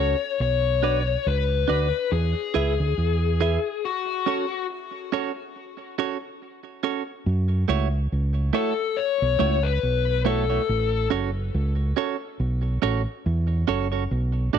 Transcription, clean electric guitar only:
0.00 0.15 C#4 medium
0.00 0.15 F#4 medium
0.00 0.16 A4 medium
0.00 0.16 C#5 medium
0.83 1.01 D4 medium
0.83 1.01 F#4 medium
0.83 1.02 B4 medium
0.83 1.02 D5 medium
1.68 1.87 D4 medium
1.68 1.87 F#4 medium
1.68 1.87 B4 medium
1.68 1.87 D5 loud
2.54 2.73 E4 medium
2.54 2.73 G#4 medium
2.54 2.73 B4 medium
2.54 2.73 E5 loud
3.40 3.59 E4 medium
3.40 3.59 G#4 medium
3.40 3.59 B4 medium
3.40 3.59 E5 medium
4.26 4.44 C#4 medium
4.26 4.45 F#4 medium
4.26 4.45 A4 medium
4.26 4.45 C#5 medium
5.12 5.30 C#4 medium
5.12 5.31 F#4 medium
5.12 5.31 A4 medium
5.12 5.31 C#5 loud
5.98 6.16 C#4 medium
5.98 6.16 F#4 medium
5.98 6.17 A4 medium
5.98 6.17 C#5 medium
6.83 7.02 C#4 medium
6.83 7.02 F#4 medium
6.83 7.02 A4 medium
6.83 7.02 C#5 medium
7.68 7.87 A3 medium
7.68 7.87 E4 medium
7.68 7.87 F#4 medium
7.68 7.88 C#5 medium
8.53 8.72 A3 medium
8.53 8.72 E4 medium
8.53 8.73 F#4 medium
8.53 8.73 C#5 medium
9.39 9.58 A3 medium
9.39 9.58 E4 medium
9.39 9.58 F#4 medium
9.39 9.58 C#5 medium
10.25 10.44 A3 medium
10.25 10.44 E4 medium
10.25 10.44 F#4 medium
10.25 10.44 C#5 medium
10.50 10.61 A3 soft
10.50 10.61 E4 medium
10.50 10.61 F#4 medium
10.50 10.61 C#5 medium
11.10 11.29 C#4 medium
11.10 11.29 F#4 medium
11.10 11.30 A4 medium
11.10 11.30 C#5 medium
11.97 12.15 C#4 medium
11.97 12.15 F#4 medium
11.97 12.16 A4 loud
11.97 12.16 C#5 medium
12.82 13.01 C#4 medium
12.82 13.01 F#4 loud
12.82 13.01 A4 medium
12.82 13.01 C#5 loud
13.68 13.86 C#4 medium
13.68 13.86 F#4 medium
13.68 13.87 A4 medium
13.68 13.87 C#5 medium
13.92 14.04 C#4 medium
13.92 14.03 F#4 medium
13.92 14.03 A4 medium
13.92 14.03 C#5 medium
14.53 14.59 D4 medium
14.53 14.59 F#4 medium
14.53 14.59 A4 medium
14.53 14.59 D5 medium

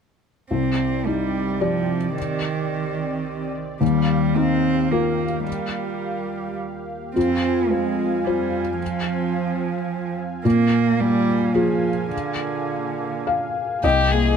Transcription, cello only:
0.51 1.08 C4 medium
1.06 1.62 G3 medium
1.60 2.16 F3 medium
2.17 3.51 D#3 medium
3.82 4.38 G3 medium
4.37 4.93 C4 medium
4.91 5.46 A#3 medium
5.46 6.57 G3 soft
7.16 7.72 C4 medium
7.70 8.27 G#3 medium
8.25 8.80 G3 soft
8.80 10.14 F3 medium
10.45 11.02 A#3 medium
11.00 11.56 G3 medium
11.55 12.11 F3 medium
12.12 13.25 D3 soft
13.83 14.37 A#3 soft

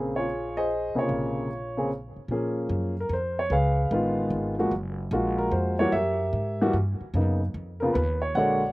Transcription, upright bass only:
0.00 0.92 A#1 medium
0.95 muted upright bass stroke soft
1.09 2.13 A#1 medium
2.16 muted upright bass stroke soft
2.28 2.68 A#2 medium
2.69 3.09 F#2 medium
3.09 3.49 F2 medium
3.50 3.90 C#2 medium
3.91 4.30 A1 medium
4.30 4.70 G#1 medium
4.71 5.10 F#1 medium
5.11 5.51 A#1 loud
5.51 5.91 F2 medium
5.92 6.32 F#2 medium
6.33 6.72 G#2 medium
6.73 6.99 G2 medium
7.01 muted upright bass stroke soft
7.14 7.53 F#2 medium
7.54 7.93 F2 medium
7.95 8.34 D#2 medium
8.35 8.72 A#1 medium

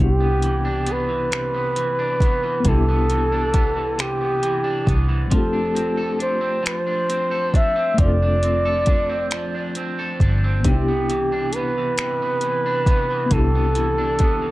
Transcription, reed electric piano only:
0.00 2.60 C3 soft
0.00 2.58 B3 medium
0.00 2.61 D4 soft
0.00 2.62 E4 soft
0.00 2.64 G4 medium
2.60 5.27 C3 soft
2.60 5.25 B3 medium
2.66 5.28 D4 soft
2.66 5.30 E4 soft
2.72 5.31 G4 medium
5.28 5.36 G3 soft
5.28 7.94 C4 soft
5.33 7.93 A3 medium
5.33 7.95 D4 soft
5.33 7.97 F4 soft
5.38 7.98 G4 medium
7.94 10.59 A3 medium
7.94 10.60 C4 soft
8.00 10.62 D4 soft
8.00 10.63 F4 soft
8.05 10.64 A4 medium
10.60 13.27 C3 soft
10.60 13.25 B3 medium
10.65 13.28 D4 soft
10.65 10.73 D#4 soft
10.71 13.33 E4 soft
10.71 13.31 G4 medium
13.26 14.51 C3 soft
13.26 14.51 B3 medium
13.32 14.51 D4 soft
13.32 14.51 E4 soft
13.37 14.51 G4 medium

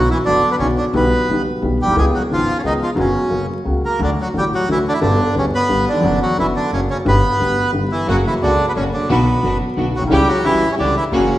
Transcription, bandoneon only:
0.11 0.19 E3 medium
0.11 0.18 E4 medium
0.25 0.50 D3 medium
0.25 0.49 D4 medium
0.51 0.55 B3 medium
0.51 0.56 B4 medium
0.59 0.69 C#3 medium
0.59 0.67 C#4 medium
0.77 0.86 D3 soft
0.77 0.85 D4 medium
0.95 1.42 B3 medium
0.95 1.43 B4 medium
1.82 1.96 G3 medium
1.82 1.96 G4 medium
1.97 2.05 G#3 medium
1.97 2.05 G#4 medium
2.14 2.21 F#3 medium
2.14 2.23 F#4 medium
2.32 2.54 F3 medium
2.32 2.58 F4 medium
2.57 2.61 C#3 medium
2.57 2.61 C#4 medium
2.65 2.72 D#3 medium
2.65 2.73 D#4 medium
2.82 2.89 F3 medium
2.82 2.90 F4 medium
2.99 3.46 C#3 soft
2.99 3.46 C#4 medium
3.85 4.01 A#3 medium
3.85 4.00 A#4 medium
4.02 4.09 D3 medium
4.02 4.10 D4 medium
4.21 4.27 F#3 medium
4.21 4.28 F#4 medium
4.37 4.44 G3 medium
4.37 4.45 G4 medium
4.54 4.69 F#3 medium
4.54 4.69 F#4 medium
4.71 4.78 E3 medium
4.71 4.79 E4 medium
4.88 4.93 D3 medium
4.88 4.93 D4 medium
4.93 5.00 E4 medium
5.01 5.35 D3 medium
5.01 5.35 D4 medium
5.38 5.45 C#3 medium
5.38 5.46 C#4 medium
5.55 5.89 B3 medium
5.55 5.85 B4 medium
5.88 6.19 D3 medium
5.88 6.19 D4 medium
6.22 6.37 F#3 medium
6.22 6.37 F#4 medium
6.39 6.46 E3 medium
6.39 6.47 E4 medium
6.56 6.71 D3 medium
6.56 6.71 D4 medium
6.73 6.81 C#3 medium
6.73 6.80 C#4 medium
6.90 6.98 C#3 medium
6.90 6.98 C#4 medium
7.08 7.71 B3 medium
7.08 7.71 B4 medium
7.92 8.07 E3 soft
7.92 8.07 E4 medium
8.09 8.17 F#3 medium
8.09 8.16 F#4 medium
8.27 8.35 E3 medium
8.27 8.34 E4 medium
8.42 8.66 D3 medium
8.42 8.66 D4 medium
8.68 8.72 B3 medium
8.68 8.73 B4 medium
8.76 8.85 C#3 medium
8.76 8.84 C#4 medium
8.94 9.10 D3 medium
8.94 9.09 D4 medium
9.11 9.58 B3 medium
9.11 9.58 B4 soft
9.96 10.04 F#3 medium
9.96 10.03 F#4 medium
10.13 10.28 G3 medium
10.13 10.28 G4 medium
10.28 10.44 F#3 medium
10.28 10.46 F#4 medium
10.45 10.69 E3 medium
10.45 10.71 E4 medium
10.72 10.75 C#3 medium
10.72 10.75 C#4 medium
10.79 10.95 D3 medium
10.79 10.95 D4 medium
10.97 11.04 E3 medium
10.97 11.04 E4 medium
11.14 11.38 C#3 medium
11.14 11.38 C#4 medium

